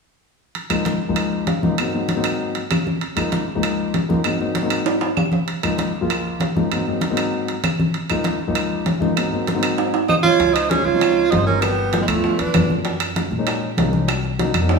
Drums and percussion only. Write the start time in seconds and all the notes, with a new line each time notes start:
0.55 high conga, high timbale
0.70 high conga, high timbale, claves
0.85 high conga, high timbale, low timbale
1.02 high conga
1.16 high conga, high timbale, claves
1.32 high conga
1.47 high conga, high timbale, low timbale
1.63 high conga
1.78 high conga, high timbale, claves
1.94 high conga
2.09 high conga, high timbale, low timbale
2.24 high conga, high timbale, claves
2.40 high conga
2.55 high conga, high timbale
2.71 high conga, high timbale, low timbale, claves
2.87 high conga
3.01 high conga, high timbale
3.17 high conga, high timbale, claves
3.32 high conga, high timbale, low timbale
3.48 high conga
3.63 high conga, high timbale, claves
3.79 high conga
3.94 high conga, high timbale, low timbale
4.10 high conga
4.24 high conga, high timbale, claves
4.40 high conga
4.55 high conga, high timbale, low timbale
4.70 high conga, high timbale, claves
4.86 high conga, high timbale
5.01 high conga, high timbale
5.17 high conga, low timbale, claves
5.32 high conga, low timbale
5.47 high conga, high timbale
5.63 high conga, high timbale, claves
5.78 high conga, high timbale, low timbale
5.94 high conga
6.09 high conga, high timbale, claves
6.25 high conga
6.40 high conga, high timbale, low timbale
6.56 high conga
6.71 high conga, high timbale, claves
6.87 high conga
7.01 high conga, high timbale, low timbale
7.17 high conga, high timbale, claves
7.33 high conga
7.48 high conga, high timbale
7.64 high conga, high timbale, low timbale, claves
7.80 high conga
7.94 high conga, high timbale
8.10 high timbale, claves
8.24 high conga, high timbale, low timbale
8.41 high conga
8.55 high conga, high timbale, claves
8.71 high conga
8.86 high conga, high timbale, low timbale
9.02 high conga
9.17 high conga, high timbale, claves
9.33 high conga
9.47 high conga, high timbale, low timbale
9.63 high conga, high timbale, claves
9.78 high conga, high timbale
9.93 high conga, high timbale
10.09 high conga, low timbale, claves
10.24 high conga, low timbale
10.40 high bongo, high conga, high timbale
10.55 high bongo, high conga, high timbale, claves
10.71 high bongo, high conga, high timbale, low timbale
10.87 high bongo, high conga
11.01 high bongo, high conga, high timbale, claves
11.17 high conga
11.32 high bongo, low bongo, high conga, high timbale, low timbale
11.48 high bongo, high conga
11.62 high bongo, high conga, high timbale, claves
11.78 high bongo, high conga
11.93 high bongo, high conga, high timbale, low timbale
12.08 high bongo, high conga, high timbale, claves
12.24 high bongo, high conga
12.39 high conga, high timbale
12.54 high bongo, low bongo, high conga, high timbale, low timbale, claves
12.70 high bongo, high conga
12.85 high bongo, high conga, high timbale
13.00 high bongo, high conga, high timbale, claves
13.16 high bongo, high conga, high timbale, low timbale
13.31 high bongo, high conga
13.47 high bongo, high conga, high timbale, claves
13.63 high conga
13.78 high bongo, low bongo, high conga, high timbale, low timbale
13.93 high bongo, high conga
14.08 high bongo, high conga, high timbale, claves
14.23 high bongo, high conga
14.39 high bongo, high conga, high timbale, low timbale
14.54 high bongo, high conga, high timbale, claves
14.69 high bongo, high timbale